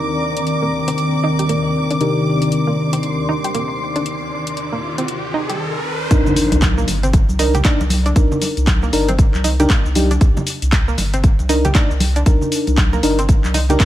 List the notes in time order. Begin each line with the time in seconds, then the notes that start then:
Already playing: C3 D#3 C4 D4 D#4 G4 A#4 D5 A#5 D6
0.37 closed hi-hat
0.47 closed hi-hat
0.62 A#3
0.88 C4, closed hi-hat
0.98 closed hi-hat
1.24 D#4
1.39 G4, closed hi-hat
1.49 A#3, closed hi-hat
1.70 C6
1.90 D4, closed hi-hat
2.00 C3 D4 D#4 G4 A#4, closed hi-hat, riser
2.42 closed hi-hat
2.52 closed hi-hat
2.67 A#3
2.93 C4, closed hi-hat
3.03 closed hi-hat
3.29 D#4
3.44 G4, closed hi-hat
3.54 A#3, closed hi-hat
3.96 D4, closed hi-hat
4.06 closed hi-hat
4.47 closed hi-hat
4.57 closed hi-hat
4.73 A#3
4.98 C4, closed hi-hat
5.08 closed hi-hat
5.34 D#4
5.49 G4, closed hi-hat
6.11 C2 D4 D#4 A#4, kick, closed hi-hat, impact, shaker
6.26 muted conga, low conga, shaker
6.36 open hi-hat, shaker
6.52 C2, closed hi-hat, muted conga, shaker
6.62 kick, clap, closed hi-hat, high conga, shaker
6.78 A#3, shaker
6.88 G1, open hi-hat, muted conga, shaker
7.03 C4, closed hi-hat, shaker
7.13 kick, closed hi-hat, muted conga, shaker
7.29 C2, high conga, shaker
7.39 D4 D#4 A#4, open hi-hat, shaker
7.54 G4, closed hi-hat, muted conga, low conga, shaker
7.65 A#3 D4 D#4 D5, kick, clap, closed hi-hat, shaker
7.80 C2, muted conga, shaker
7.90 open hi-hat, high conga, shaker
8.06 D4, closed hi-hat, shaker
8.16 C2 D4 D#4 A#4, kick, closed hi-hat, muted conga, shaker
8.32 low conga, shaker
8.42 open hi-hat, muted conga, shaker
8.57 C2, closed hi-hat, shaker
8.67 kick, clap, closed hi-hat, high conga, shaker
8.82 A#3, muted conga, shaker
8.93 G1 D4 D#4 A#4, open hi-hat, shaker
9.08 C4, closed hi-hat, muted conga, shaker
9.19 kick, closed hi-hat, shaker
9.34 C2, clap, high conga, shaker
9.44 D#4, open hi-hat, muted conga, shaker
9.60 D4 D#4 G4 A#4, closed hi-hat, low conga, shaker
9.70 A#3, kick, clap, closed hi-hat, muted conga, shaker
9.85 C2, shaker
9.95 D4 D#4 G4, open hi-hat, high conga, shaker
10.11 D4, closed hi-hat, muted conga, shaker
10.21 C2, kick, closed hi-hat, shaker
10.37 muted conga, low conga, shaker
10.47 open hi-hat, shaker
10.62 C2, closed hi-hat, shaker
10.72 kick, clap, closed hi-hat, muted conga, high conga, shaker
10.88 A#3, shaker
10.98 G1, open hi-hat, muted conga, shaker
11.13 C4, closed hi-hat, shaker
11.24 kick, closed hi-hat, shaker
11.39 C2, muted conga, high conga, shaker
11.49 D4 D#4 A#4, open hi-hat, shaker
11.65 G4, closed hi-hat, muted conga, low conga, shaker
11.75 A#3 D4 D#4 D5, kick, clap, closed hi-hat, shaker
11.90 C2, shaker
12.00 open hi-hat, muted conga, high conga, shaker
12.16 D4, closed hi-hat, shaker
12.26 C2 D4 D#4 A#4, kick, closed hi-hat, muted conga, shaker
12.41 low conga, shaker
12.52 open hi-hat, shaker
12.67 C2, closed hi-hat, muted conga, shaker
12.77 kick, clap, closed hi-hat, high conga, shaker
12.93 A#3, muted conga, shaker
13.03 G1 D4 D#4 A#4, open hi-hat, shaker
13.19 C4, closed hi-hat, shaker
13.29 kick, closed hi-hat, muted conga, shaker
13.44 C2, clap, high conga, shaker
13.54 D#4, open hi-hat, muted conga, shaker
13.69 D4 D#4 G4 A#4, closed hi-hat, low conga, shaker
13.80 A#3, kick, clap, closed hi-hat, shaker